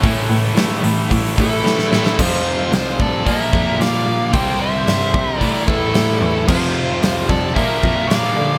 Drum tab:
CC |----------------|x---------------|----------------|x---------------|
HH |o-o-o-o-o-o-----|----o---o---o---|o---o---o---o---|----o---o---o---|
SD |----o-------oooo|----o-------o---|----o-------o---|----o-------o---|
BD |o-------o-o-----|o-----o-o-o-----|o-----o-o-o-----|o-----o-o-o-----|